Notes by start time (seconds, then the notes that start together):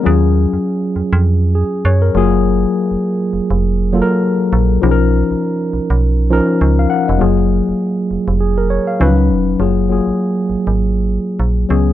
0.03 D#2 F#3 C#4 F4 G#4
0.53 F2
0.96 F2
1.13 F2
1.55 G#4
1.85 F#2 C#5
2.02 A#4
2.15 F#1 F#3 A#3 F4 G#4
2.91 F1
3.33 F1
3.51 F1
3.93 F#3 A#3 F4 A4
4.02 A#4
4.53 A#1
4.82 B1 F3 C#4 D#4 G#4
4.91 A#4
5.31 B1
5.73 B1
5.90 B1
6.30 F3 C#4 D#4 A#4
6.61 C#2
6.79 F5
6.90 F#5
7.08 F1 D#5
7.18 F#1 F#3 A#3 F4 G#4
7.69 F1
8.11 F1
8.28 F1
8.40 G#4
8.58 A#4
8.70 C#5
8.87 F5
9.00 C#2 F3 C#4 D#4 B4
9.06 F#3
9.30 F1
9.59 F#1 F#3 A#3 F4 G#4
9.89 F#3 A#3 F4 G#4
10.07 G#1
10.50 G#1
10.67 G#1
11.40 A#1
11.69 C#2 F#3 B3 C#4 G#4